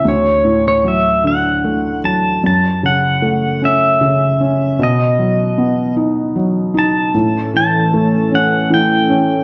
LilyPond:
<<
  \new Staff \with { instrumentName = "Pedal steel guitar" } { \time 6/8 \key fis \phrygian \tempo 4. = 51 cis''8. cis''16 e''8 fis''4 a''8 | a''8 fis''4 e''4. | dis''4. r4 a''8~ | a''8 a''4 fis''8 g''4 | }
  \new Staff \with { instrumentName = "Analog synth pad" } { \time 6/8 \key fis \phrygian r2. | r2. | r2. | <e a cis' a'>2. | }
  \new Staff \with { instrumentName = "Felt piano" } { \clef bass \time 6/8 \key fis \phrygian d,8 a,8 fis8 d8 a8 fis8 | fis,8 cis8 a8 cis'8 cis8 cis'8 | b,8 fis8 b8 dis'8 fis8 dis'8 | a,8 e8 a8 cis'8 e8 cis'8 | }
>>